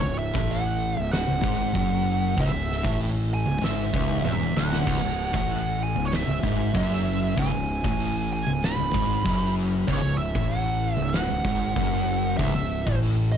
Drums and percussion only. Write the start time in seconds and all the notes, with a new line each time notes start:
0.35 kick
0.51 open hi-hat
1.12 snare, open hi-hat
1.44 kick
1.75 kick, open hi-hat
2.38 kick, open hi-hat
2.72 snare
2.85 kick
3.00 open hi-hat
3.63 snare, open hi-hat
3.94 kick
4.25 high tom
4.57 snare
4.73 snare
4.87 kick, open hi-hat, crash
5.34 kick
5.50 open hi-hat
6.12 snare, open hi-hat
6.43 kick
6.75 kick, open hi-hat
7.38 kick, open hi-hat
7.84 kick
8.00 open hi-hat
8.63 snare, open hi-hat
8.94 kick
9.26 kick, open hi-hat
9.88 kick, open hi-hat
10.35 kick
10.51 open hi-hat
11.13 snare, open hi-hat
11.45 kick
11.76 kick, open hi-hat
12.39 kick, open hi-hat
12.87 kick
13.03 open hi-hat